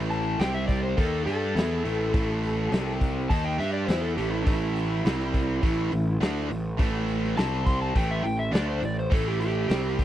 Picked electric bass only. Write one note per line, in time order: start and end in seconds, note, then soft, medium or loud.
0.00 0.35 A1 medium
0.39 0.93 C2 medium
0.98 1.25 D#2 medium
1.26 1.53 G2 medium
1.55 1.82 E2 medium
1.85 2.12 A1 medium
2.14 2.68 A1 medium
2.71 3.26 C2 medium
3.30 3.57 D#2 medium
3.59 3.86 G2 medium
3.88 4.15 E2 medium
4.18 4.45 A1 medium
4.47 5.01 A1 medium
5.05 5.59 C2 medium
5.63 5.90 A1 medium
5.92 6.19 A1 medium
6.20 6.48 D2 loud
6.50 6.77 A1 medium
6.79 7.33 A1 medium
7.37 7.91 C2 medium
7.95 8.22 A1 medium
8.24 8.51 A1 medium
8.53 8.80 D2 loud
8.82 9.09 A1 medium
9.12 9.66 A1 medium
9.69 10.04 C2 medium